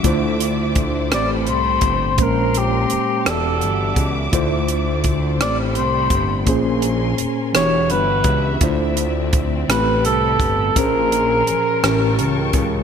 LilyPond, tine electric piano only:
\new Staff \with { instrumentName = "Tine electric piano" } { \time 6/8 \key a \minor \tempo 4. = 56 <d a e' f' c''>4. <a, a c' g' c''>4. | <bes, aes bes des' c''>4. <e b fis' g' d''>4. | <d a e' f' c''>4. <a, a c' g' c''>4. | <bes, bes des' aes' c''>4. <e b d' fis' g'>4. |
<d a e' f' c''>4. <a, a c' g' b'>4. | <bes, f des' aes' c''>4. <a, e cis' g' bes'>4. | }